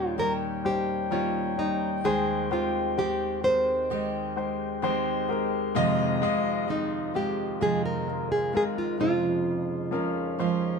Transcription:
Already playing: D#2 A#2 D#3 G3 A#3 C#4 D#4 G4 C5 C#5 G5
0.18 D#3 G3 A#3 C#4 D#4 G4 A#4 C#5
0.64 G3 D#4 G4 C5
1.10 D#3 G3 A#3 C#4 D#4 F4 G4 C#5
1.58 G3 D#4 C#5
2.03 D#2 D#3 G#3 C4 D#4 G#4 C5 G5
2.51 G#3 C4 F4 G4 C5
2.97 D#3 G#3 C4 G4 C5
3.44 G#3 C4 G4 A#4 C5
3.90 D#3 G#3 C4 G4 D#5
4.36 G#3 G4 C5
4.82 D#3 G#3 C4 G4 C5
5.29 G#3 G4 A#4
5.75 F2 C3 D#3 G#3 C4 F4 D#5
6.21 D#3 G#3 C4 F4 D#5
6.68 D#3 G#3 C4 D#4 F4 D#5
7.14 D#3 G#3 C4 F4 G4
7.60 F2 C3 D#3 G#3 C4 F4 G#4 D#5
7.86 A#4
8.07 G#3 F4 A#4
8.32 G#4
8.53 D#3 G#3 C4 F4 G#4 A#4
8.78 F4
8.99 F2 C3 C#3 F3 G#3 F4 C5
9.91 F3 G#3 C#4 F4 A#4
10.39 F3 G#3 C#4 F4 C5

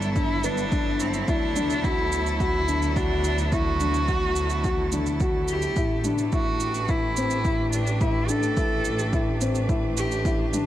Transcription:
Already playing: G1 F#3 B3 D4 E4 A4
0.02 shaker
0.16 D4 E4, kick, shaker
0.44 B3 D4, shaker
0.57 shaker
0.72 D4, kick, shaker
1.00 C4, shaker
1.14 shaker
1.28 D2 D4 E4, kick, shaker
1.56 D4, mid tom, shaker
1.70 shaker
1.84 E4 F#4, kick, shaker
2.12 shaker
2.27 shaker
2.40 E4 F#4, kick, shaker
2.68 D4, shaker
2.82 shaker
2.96 D4 F#4, kick, shaker
3.24 shaker
3.38 shaker
3.52 E4 F#4, kick, shaker
3.80 D4, mid tom, shaker
3.94 shaker
4.08 F#4, kick, shaker
4.36 shaker
4.50 shaker
4.64 F#4, kick, shaker
4.92 D4, mid tom, shaker
5.06 shaker
5.20 F#4, kick, shaker
5.48 G4, shaker
5.62 shaker
5.76 A1 A3 E4, kick, shaker
6.04 D4, mid tom, shaker
6.09 D4
6.18 shaker
6.32 E4 F#4, kick, shaker
6.60 G4, shaker
6.69 B4
6.74 shaker
6.88 E4, kick, shaker
7.16 C4, shaker
7.30 shaker
7.45 E4, kick, shaker
7.73 D4, shaker
7.87 shaker
8.01 E4, kick, shaker
8.29 D4 A4, shaker
8.43 shaker
8.57 E4, kick, shaker
8.85 shaker
8.99 shaker
9.13 E4, kick, shaker
9.41 C4, shaker
9.55 shaker
9.69 E4, kick, shaker
9.97 G4, shaker
10.12 shaker
10.25 E4, kick, shaker
10.53 D4, mid tom, shaker

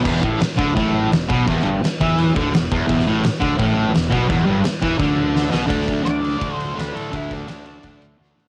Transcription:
0.03 E1 E2, kick, crash
0.16 snare
0.21 A1 A2, kick
0.40 muted distorted electric guitar stroke, muted fingered electric bass stroke, snare, crash
0.52 snare
0.57 D2 D3, kick
0.75 A1 A2, kick, crash
1.11 E1 E2, snare, crash
1.29 B1 B2, kick
1.47 E1 E2, kick, crash
1.60 snare
1.64 G1 G2
1.82 muted distorted electric guitar stroke, muted fingered electric bass stroke, snare, crash
2.00 E2 E3, kick
2.18 crash
2.35 D2 D3, kick
2.53 E1 E2, snare, crash
2.71 E1 E2, kick
2.87 E1 E2, kick, crash
2.99 snare
3.06 A1 A2
3.23 muted distorted electric guitar stroke, muted fingered electric bass stroke, snare, crash
3.35 snare
3.40 D2 D3, kick
3.58 A1 A2, kick, crash
3.93 E1 E2, snare, crash
4.10 B1 B2, kick
4.29 E1 E2, kick, crash
4.46 G1 G2
4.64 muted distorted electric guitar stroke, muted fingered electric bass stroke, snare, crash
4.82 E2 E3, kick
4.99 D2 D3, kick, crash
5.36 snare
5.51 B1 B2, snare
5.67 D2 D3 A3 D4, kick, ride
5.82 snare
5.88 D2, kick, ride
6.03 D2 D3 A3 D4 D5, ride
6.07 snare
6.21 D3 A3 D4, ride
6.37 D3 A3 D4
6.41 D2, kick, ride
6.54 D2 C5
6.60 ride
6.75 D2 D3 A3 D4 B4, ride
6.81 snare
6.93 A2 D3 A3 D4 A4, ride
7.12 D2 D3 A3 D4, kick, ride
7.16 E4
7.31 D2 D4, kick, ride
7.47 D2 D3 A3 D4, snare, ride
7.59 snare
7.65 D3 A3 D4, ride
7.83 D2 D3 A3 D4, kick, ride
8.02 D2, ride
8.18 D2 D3 A3 D4, snare
8.34 A2 D3 A3 D4, snare

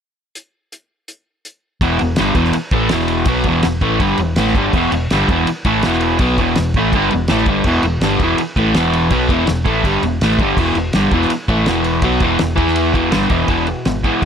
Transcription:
0.35 closed hi-hat
0.72 closed hi-hat
1.08 closed hi-hat
1.45 closed hi-hat
1.81 E1 E2 B2 E3, kick, ride
1.99 E1 E2 B2, ride
2.16 G1 G2 D3, snare, ride
2.20 G3
2.34 E1 E2 B2 E3, kick, ride
2.45 snare
2.53 muted overdriven electric guitar stroke, ride
2.71 A1 A2 E3 A3, kick, ride
2.89 E1 E2 B2 E3, snare, ride
3.00 snare
3.08 ride
3.25 B1 B2 F#3 B3, kick, ride
3.44 E1 E2, kick, ride
3.48 B2 E3
3.63 E1 E2 B2, snare, ride
3.81 A1 A2 E3 A3, kick, ride
4.00 G2 D3 G3, kick, ride
4.18 E1 E2 B2, ride
4.36 A1 A2 E3 A3, snare, ride
4.47 snare
4.55 G1 G2 D3 G3, kick, ride
4.73 E1 E2 B2, kick, crash
4.77 E3
4.92 E1 E2 B2, ride
5.10 G1 G2 D3 G3, snare, ride
5.28 E1 E2 B2 E3, kick, ride
5.47 muted fingered electric bass stroke, muted overdriven electric guitar stroke, ride
5.65 A1 A2 E3 A3, kick, ride
5.83 E1 E2 B2 E3, snare, ride
5.93 snare
6.01 ride
6.19 B1 B2 F#3 B3, kick, ride
6.38 E2 B2 E3, kick, ride
6.55 E1 E2 B2, snare, ride
6.74 A1 A2 E3, kick, ride
6.78 A3
6.92 G1 G2 D3, kick, ride
6.97 G3
7.11 E1 E2 B2, ride
7.28 A1 A2 E3 A3, snare, ride
7.38 snare
7.46 G1 G2 D3 G3, kick, ride
7.64 E1 E2 B2 E3, kick, crash
7.83 E1 E2 B2, ride
8.00 G1 G2 D3 G3, snare, ride
8.20 E1 E2 B2, kick, ride
8.24 E3
8.38 muted overdriven electric guitar stroke, ride
8.56 A1 A2 E3 A3, kick, ride
8.74 E1 E2 B2 E3, snare, ride
8.93 ride
9.10 B1 B2 F#3 B3, kick, ride
9.29 E1 E2 B2 E3, kick, ride
9.47 E1 E2 B2, snare, ride
9.65 A1 A2 E3 A3, kick, ride
9.83 G1 G2 D3 G3, kick, ride
10.02 E1 E2 B2, ride
10.21 A1 A2 E3 A3, snare, ride
10.31 snare
10.38 G1 G2 D3, kick, ride
10.43 G3
10.57 E1 E2 B2 E3, kick, crash
10.75 E1 E2 B2, ride
10.93 G1 G2 D3 G3, snare, ride
11.11 E1 E2 B2 E3, kick, ride
11.22 snare
11.30 muted fingered electric bass stroke, muted overdriven electric guitar stroke, ride
11.48 A1 A2 E3 A3, kick, ride
11.66 E1 E2 B2 E3, snare, ride
11.84 ride
12.02 B1 B2 F#3 B3, kick, ride
12.20 E1 E2 B2 E3, kick, ride
12.39 E1 E2 B2, snare, ride
12.56 E2 E3 B3 E4, kick, ride
12.68 snare
12.76 ride
12.93 E1 E2 B2 E3, kick, ride
13.11 G1 G2 D3 G3, snare, ride
13.22 snare
13.30 E1 E2 B2 E3, kick, ride
13.48 E1 E2 B2 E3, kick, ride
13.67 E2 B2, ride
13.85 G#1 E2 B2, snare, ride
14.04 E2 B2 E3, kick, ride

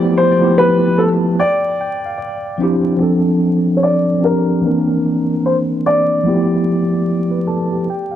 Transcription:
Already playing: F3 A3 B3 E4 G4 C5
0.17 C5
0.38 F3 A3 B3
0.43 E4 G4
0.58 B4
0.98 A4 A5
1.39 D5 G5
1.81 G5
2.06 F5
2.18 D5
2.58 F3 C4 D4 C5
2.62 E4 G4
2.97 F3 C4 D4
3.03 A4
3.77 C#5
3.83 D5
4.18 F3 C4 D4
4.24 G4 A#4
4.61 E3 A#3 C4
4.66 D4 A#4
5.46 C5
5.86 D5
6.23 F3 A3 B3
6.27 E4 G4
7.31 B4
7.47 A4 A5
7.72 G4
7.90 G5
8.11 F5

